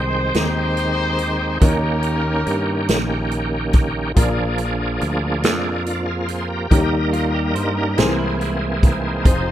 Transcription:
Already playing: C2 G#2 D#3 G#3 C4 D#4 C5 G5
0.34 D#2 D#4 G4 C5, snare, closed hi-hat
0.77 closed hi-hat
1.18 closed hi-hat
1.60 D#2 D#3 A#3 C#4 D#4 G4 A#4 C#5, kick, closed hi-hat
1.64 A#4
2.03 closed hi-hat
2.47 G2, closed hi-hat
2.89 A#1, snare, closed hi-hat
3.31 closed hi-hat
3.73 kick, closed hi-hat
4.14 A#1 A#2 F3 A#3 D4 F4 G#4 A#4, kick, closed hi-hat
4.19 D5
4.58 closed hi-hat
5.01 D2, closed hi-hat
5.44 F2, snare, closed hi-hat
5.86 D4 F4, closed hi-hat
6.06 F4 G#4
6.28 G#4 C5, closed hi-hat
6.48 G4 A#4
6.70 D#2 D#3 G3 A#3 D#4 G4 A#4 C#5, kick, closed hi-hat
6.79 D#5
7.13 F4, closed hi-hat
7.35 A#3 G4
7.55 G2 D#4 C5, closed hi-hat
7.77 C#4 A#4
7.97 C2 C3 E3 A#3 C4 D#4 G#4 A#4 C5, snare, closed hi-hat
8.04 E3
8.19 G#3 E4
8.41 closed hi-hat
8.83 D#4 G#4 C5, kick, closed hi-hat
9.23 F1 F3 C4 D#4 F4 G#4, kick, closed hi-hat
9.28 C5

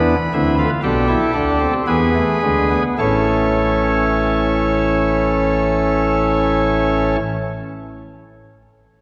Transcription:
Already playing: E2 E3 B3 D4 B4
0.34 D2 D3 C4 E4
0.59 F4
0.83 B1 B2 D4 G4 A4
1.08 E4
1.34 D2 D3 D4
1.60 C4
1.87 E2 E3 B3 G#4 B4
2.15 A3
2.42 D2 D3 G#3
2.71 B3
2.98 A1 A2 E3 A3 C#4 A4 C#5

